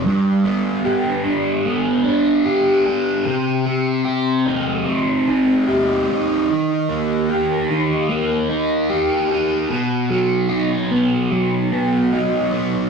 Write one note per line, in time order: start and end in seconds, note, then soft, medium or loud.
0.06 2.06 G2 medium
0.45 1.64 B3 medium
0.85 2.45 G4 medium
1.24 2.03 D4 medium
1.65 3.26 B3 medium
2.04 2.85 D4 medium
2.45 4.04 G4 medium
2.86 3.26 D4 medium
3.25 5.27 C3 medium
3.66 4.85 C4 medium
4.05 5.66 G4 medium
4.45 5.27 D#4 medium
4.86 6.48 C4 medium
5.28 6.08 D#4 medium
5.67 6.48 G4 medium
6.08 7.70 D#4 medium
6.50 8.51 D#3 medium
6.89 8.07 A#3 medium
7.29 8.88 G4 medium
7.70 8.48 D#4 medium
8.09 9.70 A#3 medium
8.50 9.30 D#4 medium
8.90 9.71 G4 medium
9.31 9.71 D#4 medium
9.69 11.72 B2 medium
10.10 11.30 F#3 medium
10.49 12.11 D#4 medium
10.91 11.71 B3 medium
11.31 12.90 F#3 medium
11.72 12.51 B3 medium
12.13 12.90 D#4 medium
12.52 12.90 B3 medium